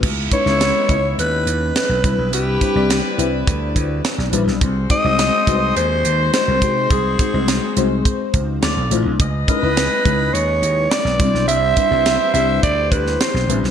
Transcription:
<<
  \new Staff \with { instrumentName = "Alto saxophone" } { \time 4/4 \key cis \minor \tempo 4 = 105 r8 cis''4. b'4 b'4 | g'2 r2 | r8 dis''4. bis'4 bis'4 | gis'2 r2 |
r8 b'4. cis''4 d''4 | e''4. e''8 d''8 b'8 c''8. r16 | }
  \new Staff \with { instrumentName = "Horn section" } { \time 4/4 \key cis \minor <gis b e'>2. r8 <e' g' b'>8~ | <e' g' b'>2.~ <e' g' b'>8 r8 | <fis' gis' bis'>1~ | <fis' gis' bis'>2~ <fis' gis' bis'>8 r8 <f' a' d''>8 r8 |
<gis' b' dis''>2. r8 <e' g' c''>8~ | <e' g' c''>2.~ <e' g' c''>8 r8 | }
  \new Staff \with { instrumentName = "FM electric piano" } { \time 4/4 \key cis \minor r8 <gis cis' dis' e' b'>16 <gis cis' e' cis'' dis''>8. <gis cis' e' b' dis''>4.~ <gis cis' e' b' dis''>16 r16 <g c' d' e' b'>8~ | <g c' d' e' b'>16 r16 <g c' d' e' c''>16 <g c' d' e' d''>8. <g c' d' e' b'>4.~ <g c' d' e' b'>16 r16 <g c' d' e' b'>8 | r8 <gis bis dis' fis' bis'>16 <gis bis dis' fis' dis''>8. <gis bis dis' fis' b' bis'>4.~ <gis bis dis' fis' b' bis'>16 r16 <gis bis dis' fis' gis'>8~ | <gis bis dis' fis' gis'>16 r16 <gis bis dis' fis' bis'>16 <gis bis dis' fis' bis'>8. <gis bis dis' fis' bis'>4. r8 <a d' e' f' c''>8 |
r8 <gis cis' dis' e' b'>16 <gis cis' dis' e' b'>8. <gis cis' dis' e' b'>4.~ <gis cis' dis' e' b'>16 r16 <g c' d' e' c''>8~ | <g c' d' e' c''>16 r16 <g c' d' e' b'>16 <g c' d' e' c''>8. <g c' d' e' g'>4.~ <g c' d' e' g'>16 r16 <g c' d' e' b'>8 | }
  \new Staff \with { instrumentName = "Slap bass" } { \clef bass \time 4/4 \key cis \minor cis,8 r16 cis,8 r16 cis,8 dis,8 dis,8 r16 b,,16 c,16 b,,16 | c,8 r16 c,8 r16 c,8 d,8 d,8 r16 b,,16 a,,16 b,,16 | bis,,8 r16 bis,,8 r16 bis,,8 dis,8 dis,8 r16 bis,,16 bis,8 | bis,,8 r16 bis,,8 r16 bis,,8 r8 cis,8 d,16 b,,16 a,,16 b,,16 |
cis,8 r16 cis,8 r16 cis,8 dis,8 dis,8 r16 b,,16 c,16 b,,16 | c,8 r16 c,8 r16 c,8 d,8 d,8 r16 b,,16 a,,16 b,,16 | }
  \new DrumStaff \with { instrumentName = "Drums" } \drummode { \time 4/4 <cymc bd>8 <hh bd>16 sn16 <hh sn>8 <hh bd>8 hh8 hh8 <hh sn>8 <hh bd>8 | hh8 <hh bd>8 <hh sn>8 hh8 <hh bd>8 <hh bd>8 <hh sn>16 sn16 hh16 sn16 | <hh bd>8 <hh bd>8 <hh sn>8 <hh bd>8 hh8 hh8 <hh sn>8 <hh bd>8 | <hh bd>8 <hh bd>8 <hh sn>8 hh8 <hh bd>8 <hh bd>8 <hh sn>8 hh8 |
<hh bd>8 <hh bd>8 <hh sn>8 <hh bd>8 hh8 hh8 <hh sn>16 sn16 <hh bd>16 sn16 | hh8 <hh bd>8 <hh sn>8 hh8 <hh bd>8 <hh bd>16 sn16 <hh sn>16 sn16 hh16 sn16 | }
>>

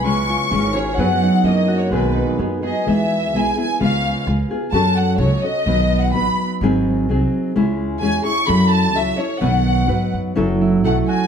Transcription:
<<
  \new Staff \with { instrumentName = "Violin section" } { \time 2/4 \key b \major \tempo 4 = 128 cis'''4. cis''8 | fis''4 \tuplet 3/2 { dis''4 cis''8 } | b'4 r8 dis''8 | \key e \major e''4 gis''8 gis''8 |
eis''4 r4 | a''8 fis''8 cis''8 dis''8~ | dis''8. fis''16 b''8. r16 | r2 |
r4 gis''8 cis'''8 | b''8 a''8 e''8 cis''8 | fis''4. r8 | r4 fis''8 gis''8 | }
  \new Staff \with { instrumentName = "Harp" } { \time 2/4 \key b \major gis8 eis'8 cis'8 gis'8 | fis8 dis'8 ais8 fis'8 | gis8 dis'8 b8 gis'8 | \key e \major r2 |
r2 | r2 | r2 | r2 |
r2 | r2 | r2 | fis8 e'8 a8 fis'8 | }
  \new Staff \with { instrumentName = "Nylon-string guitar" } { \time 2/4 \key b \major <cis gis cis' eis' gis'>4 <gis cis' eis' gis'>8 <cis' eis' gis'>8 | <fis b dis' b'>4 <fis cis' e' ais'>4 | <b, dis fis b dis' gis'>4 <fis b dis' gis'>8 <fis b dis' gis'>8 | \key e \major <e gis b e' gis'>4 <gis b e' gis'>8 <b e' gis'>8 |
<cis gis b eis' gis'>4 <gis b eis' gis'>8 <b eis' gis'>8 | <fis cis' fis' a'>4 <fis cis' fis' a'>8 <cis' fis' a'>8 | <b, dis fis b dis' b'>4 <fis b dis' b'>4 | <gis, dis fis bis dis' gis'>4 <fis bis dis' gis'>4 |
<cis gis cis' e' gis'>4 <gis cis' e' gis'>8 <cis' e' gis'>8 | <fis cis' e' a'>4 <fis cis' e' a'>8 <cis' e' a'>8 | <b, dis fis b dis' b'>4 <fis b dis' b'>4 | <fis cis' e' a'>4 <fis cis' e' a'>4 | }
  \new Staff \with { instrumentName = "Upright bass" } { \clef bass \time 2/4 \key b \major cis,4 gis,,4 | fis,4 fis,4 | b,,4 fis,4 | \key e \major e,4 b,,8 r8 |
cis,4 cis,8 r8 | fis,4 cis,8 r8 | b,,4 a,,8 r8 | gis,,4 bis,,8 r8 |
cis,4 e,8 r8 | fis,4 cis,8 r8 | b,,4 gis,8 fis,8 | fis,,4 b,,8 r8 | }
>>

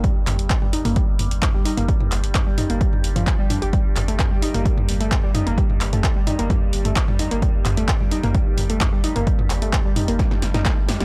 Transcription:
<<
  \new Staff \with { instrumentName = "Synth arpeggio sound" } { \time 4/4 \key ees \lydian \tempo 4 = 130 g16 r4 g16 ees'16 bes16 g16 r4 g16 ees'16 bes16 | g16 r4 g16 ees'16 bes16 g16 r8 f16 r16 g16 d'16 g'16 | g16 r8 a16 r16 g16 ees'16 bes16 g16 r8 a16 r16 g16 ees'16 bes16 | g16 r8 a16 r16 g16 ees'16 bes16 g16 r8 a16 r16 g16 ees'16 bes16 |
g16 r8 a16 r16 g16 ees'16 bes16 g16 r8 a16 r16 g16 ees'16 bes16 | g16 r8 a16 r16 g16 ees'16 bes16 g16 r8 ees'16 a16 r8 g16 | }
  \new Staff \with { instrumentName = "Synth drone" } { \clef bass \time 4/4 \key ees \lydian <g, g>1~ | <g, g>1~ | <g, g>1~ | <g, g>1~ |
<g, g>1~ | <g, g>1 | }
  \new Staff \with { instrumentName = "Sub bass" } { \clef bass \time 4/4 \key ees \lydian r16 g,,16 g,,16 g,,16 r16 g,,16 r16 g,,16 r16 g,,16 g,,16 g,,16 r16 g,,16 r16 g,,16 | r16 g,,16 g,,16 g,,16 r16 g,,16 r16 g,,16 r16 g,,16 g,,16 g,,16 r16 g,,16 r16 g,,16 | r16 g,,16 g,,16 g,,16 r16 g,,16 r16 g,,16 r16 g,,16 g,,16 g,,16 r16 g,,16 r16 g,,16 | r16 g,,16 g,,16 g,,16 r16 g,,16 r16 g,,16 r16 g,,16 g,,16 g,,16 r16 g,,16 r16 g,,16 |
r16 g,,16 g,,16 g,,16 r16 g,,16 r16 g,,16 r16 g,,16 g,,16 g,,16 r16 g,,16 r16 g,,16 | r16 g,,16 g,,16 g,,16 r16 g,,16 r16 g,,16 r16 g,,16 g,,16 g,,16 r16 g,,16 r16 g,,16 | }
  \new DrumStaff \with { instrumentName = "Drums" } \drummode { \time 4/4 <hh bd toml>8 <hc hho toml>16 hh16 <hc hh bd>16 toml16 hho16 <hho toml>16 <hh bd>8 <hho toml>16 hh16 <hc hh bd toml>8 hho16 <hh toml>16 | <hh bd>16 toml16 <hc hho>16 hh16 <hc hh bd toml>8 <hho toml>16 hh16 <hh bd>16 toml16 hho16 <hh toml>16 <hc hh bd>8 <hho toml>16 hh16 | <hh bd>8 <hc hho toml>16 hh16 <hc hh bd toml>8 hho16 <hho toml>16 <hh bd>16 toml16 hho16 hh16 <hc hh bd toml>8 <hho toml>16 hh16 | <hh bd>16 toml16 <hc hho>16 <hh toml>16 <hc hh bd>8 <hho toml>16 hh16 <hh bd toml>8 hho16 <hh toml>16 <hc hh bd>16 toml16 hho16 hh16 |
<hh bd toml>8 <hc hho toml>16 hh16 <hc hh bd>16 toml16 hho16 <hho toml>16 <hh bd>8 <hho toml>16 hh16 <hc hh bd toml>8 hho16 <hh toml>16 | <hh bd>16 toml16 <hc hho>16 hh16 <hc hh bd toml>8 <hho toml>16 hho16 <hh bd sn>16 <sn toml>16 <hho sn>16 <hh sn toml>16 <hc hh bd sn>8 <hho sn toml>16 <hh sn>16 | }
>>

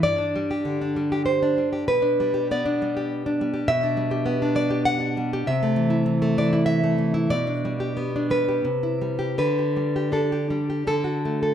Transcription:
\new Staff \with { instrumentName = "Nylon-string guitar" } { \time 3/4 \key g \major \tempo 4 = 98 << { d''2 c''4 | b'4 d''4 r4 | e''4. d''8 fis''4 | e''4. d''8 e''4 |
d''4. b'4. | b'4 a'4 a'4 | } \\ { g,16 d'16 g16 g'16 d16 d'16 g16 g'8 d'16 g16 g'16 | b,16 d'16 g16 g'16 b16 d'16 g16 g'8 d'16 g16 g'16 | b,16 d'16 g16 g'16 b16 d'16 g16 g'8 d'16 g16 g'16 | c16 a16 e16 e'16 e16 a16 e16 e'8 a16 e16 e'16 |
b,16 d'16 g16 g'16 b16 d'16 g16 g'16 c16 e'16 g16 g'16 | d16 g'16 g16 g'16 d'16 g'16 g16 g'16 d16 fis'16 a16 a'16 | } >> }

